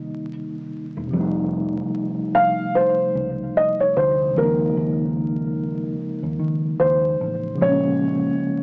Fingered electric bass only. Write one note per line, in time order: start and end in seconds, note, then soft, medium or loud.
0.00 0.28 C2 medium
0.97 1.10 E1 medium
1.13 1.80 F2 loud
3.15 3.49 C#2 medium
3.97 4.30 D2 medium
4.36 4.70 D#2 loud
4.77 5.95 D#2 medium
6.23 6.37 D#2 medium
6.39 6.73 D#3 medium
6.80 7.14 D#2 medium
7.21 7.54 A1 medium
7.61 8.28 A#1 loud